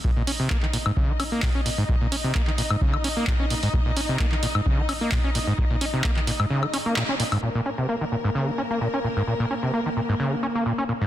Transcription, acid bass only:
X:1
M:4/4
L:1/16
Q:"Swing 16ths" 1/4=130
K:Bbm
V:1 name="Acid bass" clef=bass
B,, B,, D C, B, E, B,, A,, D, E, D B, B,, D B,, A,, | B,, B,, D C, B, E, B,, A,, D, E, D B, B,, D B,, A,, | B,, B,, D C, B, E, B,, A,, D, E, D B, B,, D B,, A,, | B,, B,, D C, B, E, B,, A,, D, E, D B, B,, D B,, A,, |
B,, B,, D C, B, E, B,, A,, D, E, D B, B,, D B,, A,, | B,, B,, D C, B, E, B,, A,, D, E, D B, B,, D B,, A,, |]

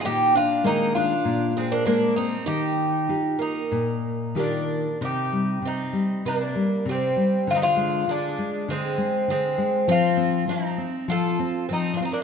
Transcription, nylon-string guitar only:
X:1
M:4/4
L:1/8
Q:1/4=98
K:Eb
V:1 name="Nylon-string guitar" clef=bass
B,,2 [E,A,B,]2 B,,2 [A,B,d]2 | E,2 [EFG]2 B,,2 [E,FG]2 | [K:Cm] C, G, C, G, C, G, C, G, | D, A, D, A, D, A, D, A, |
F, C F, C F, C F, C |]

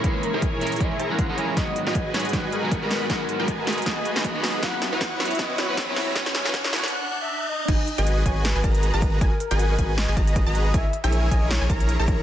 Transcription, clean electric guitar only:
X:1
M:4/4
L:1/16
Q:"Swing 16ths" 1/4=157
K:G#m
V:1 name="Clean electric guitar"
[E,G,A,CG]3 [E,G,A,CG] z2 [E,G,A,CA] z [E,G,A,CG] z2 [E,G,A,CG]2 [E,G,A,CG]3 | [D,F,G,B,F]3 [D,F,G,B,F] z2 [D,F,G,B,G] z [D,F,G,B,F] z2 [D,F,G,B,F]2 [D,F,G,B,F]3 | [D,F,G,B,F]3 [D,F,G,B,F] z2 [D,F,G,B,G] z [D,F,G,B,F] z2 [D,F,G,B,F]2 [D,F,G,B,F]3 | [F,B,CEB]3 [F,B,CEB] z2 [F,B,CEc] z [F,B,CEB] z2 [F,B,CEB]2 [F,B,CEB]3 |
[F,B,CEB]3 [F,B,CEB] z2 [F,B,CEc] z8 z | z16 | z16 | z16 |]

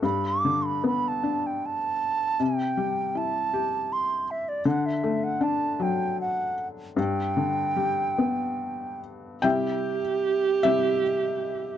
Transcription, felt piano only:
X:1
M:3/4
L:1/8
Q:1/4=76
K:G
V:1 name="Felt piano"
z6 | z6 | z6 | z6 |
[eg]3 [Ge]3 |]
V:2 name="Felt piano" clef=bass
G,, D, B, D3 | C, G, E G3 | D, A, D F,3 | G,, D, G, B,3 |
[C,G,E] z2 [C,G,E] z2 |]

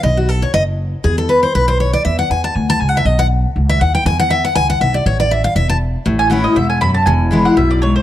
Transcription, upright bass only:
X:1
M:4/4
L:1/8
Q:"Swing" 1/4=239
K:A
V:1 name="Upright bass" clef=bass
B,,,4 F,,,4 | E,,4 B,,,4 | E,,2 E,,2 D,,2 C,,2 | B,,,4 C,,2 ^D,,2 |
E,,4 C,,2 B,,,2 | A,,,4 E,,,4 | A,,,4 E,,,4 | E,,,4 B,,,4 |]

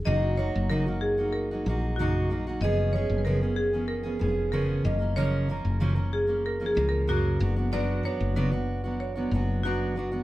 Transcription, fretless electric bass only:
X:1
M:4/4
L:1/16
Q:1/4=94
K:D#m
V:1 name="Fretless electric bass" clef=bass
F,,,3 F,,,6- F,,, A,,,6 | F,,,3 F,,,6- F,,, E,,,4 F,,,2- | F,,,3 F,,,6- F,,, C,,4 F,,,2- | F,,,2 z F,,,6- F,,, F,,,6 |]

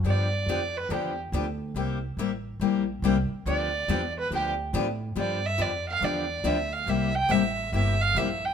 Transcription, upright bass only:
X:1
M:4/4
L:1/8
Q:"Swing" 1/4=141
K:Gmix
V:1 name="Upright bass" clef=bass
G,,2 F,,2 E,,2 D,,2 | C,,2 A,,,2 _B,,,2 C,, z | D,,2 E,,2 D,,2 A,,2 | G,,2 F,,2 E,,2 D,,2 |
C,,2 A,,,2 G,,,2 _B,,,2 |]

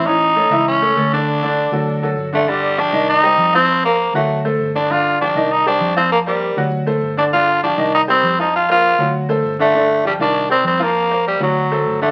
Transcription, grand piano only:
X:1
M:4/4
L:1/8
Q:1/4=198
K:Gm
V:1 name="Grand piano"
[=E,^C^c]2 [A,Ac] [E,=E=e]2 [A,Ac] [A,Ac] [D,Dd]- | [D,Dd] [D,Dd]2 [^F,^FA]2 [F,FA]2 [D,Dd] | [D,Dd]2 [F,FG] [E,Ee]2 [G,Gc]2 [F,Ff]- | [F,Ff] [B,Bc]2 [^F,^F^f]2 [A,Ac]2 [D,Dd] |
[D,Dd]2 [F,FG] [E,Ee]2 [G,Gc]2 [F,Ff]- | [F,Ff] [B,Bc]2 [^F,^F^f]2 [A,Ac]2 [D,Dd] | [D,Dd]2 [F,FG] [E,Ee]2 [G,Gc]2 [F,Ff]- | [F,Ff] [B,Bc]2 [^F,^F^f]2 [A,Ac]2 [D,Dd] |
[D,Dd]2 [F,FG] [E,Fd]2 [G,Gc]2 [F,Ff]- | [F,Ff] [B,Bc]2 [^F,^F^f]2 [A,Ac]2 [D,Dd] |]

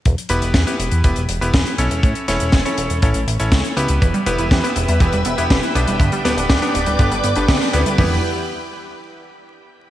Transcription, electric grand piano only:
X:1
M:4/4
L:1/16
Q:1/4=121
K:Edor
V:1 name="Electric grand piano"
z2 [B,EGB]3 [B,EGB]3 [B,EGB] z2 [B,EGB]3 [CEAc]2- | [CEAc]2 [CEAc]3 [CEAc]3 [CEAc] z2 [CEAc]3 [B,EGB]2- | [B,EGB]2 [B,EGB]3 [B,EGB]3 [B,EGB] z2 [B,EGB]3 [B,DGB]2- | [B,DGB]2 [B,DGB]3 [B,DGB]3 [B,DGB] z2 [B,DGB]3 [B,EGB]2 |
[B,EGB]2 z12 z2 |]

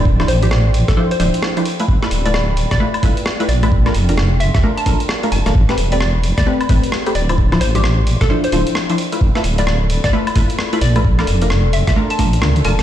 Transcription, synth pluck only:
X:1
M:4/4
L:1/16
Q:"Swing 16ths" 1/4=131
K:Gmix
V:1 name="Synth pluck"
d2 c G2 z2 A A c4 z3 | z3 d d z2 d2 z4 z d2 | z6 e e z a2 z3 a2 | z3 d d z2 d2 z4 z d2- |
d2 c G2 z2 A A c4 z3 | z3 d d z2 d2 z4 z d2 | z6 e e z a2 z3 a2 |]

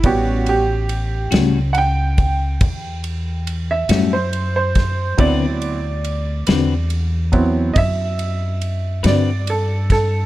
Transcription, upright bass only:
X:1
M:12/8
L:1/8
Q:3/8=47
K:D
V:1 name="Upright bass" clef=bass
A,,,3 C,,3 E,,3 F,,3 | D,,3 E,,3 F,,3 G,,3 |]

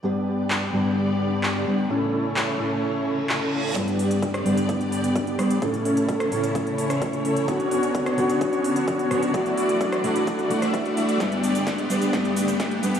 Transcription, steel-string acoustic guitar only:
X:1
M:4/4
L:1/8
Q:1/4=129
K:Glyd
V:1 name="Steel-string acoustic guitar"
[G,,G,B,DB]3 [G,,G,B,DB]4 [G,B,DB] | [A,,E,A,CA]3 [A,,E,A,CA]4- [A,,E,A,CA] | [G,,G,B,DB]3 [G,,G,B,DB]4 [G,B,DB] | [A,,E,A,CA]3 [A,,E,A,CA]4- [A,,E,A,CA] |
[D,B,CF]3 [D,B,Fc]4 [D,B,CF] | [E,A,DF]3 [E,A,DF]2 [E,A,DF]3 | [G,,G,B,DB]3 [G,,G,B,DB] [G,,G,B,DB]3 [G,,G,B,DB] |]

